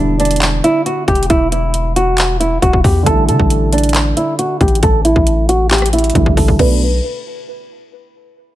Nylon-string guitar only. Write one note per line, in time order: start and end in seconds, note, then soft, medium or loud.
0.00 0.17 D4 medium
0.20 0.61 D4 medium
0.64 0.81 E4 medium
0.86 1.03 F#4 medium
1.08 1.25 G4 medium
1.30 1.47 E4 medium
1.52 1.94 E4 medium
1.96 2.38 F#4 medium
2.40 2.57 E4 medium
2.62 2.79 F#4 medium
2.84 3.01 G4 medium
3.06 3.23 A4 loud
3.29 3.70 A4 medium
3.73 4.14 D4 medium
4.17 4.34 E4 medium
4.39 4.56 F#4 medium
4.61 4.78 G4 medium
4.83 5.00 A4 loud
5.05 5.46 E4 medium
5.49 5.66 F#4 medium
5.71 5.88 G4 medium
5.93 6.35 E4 medium
6.37 6.54 A4 medium
6.59 6.80 B4 medium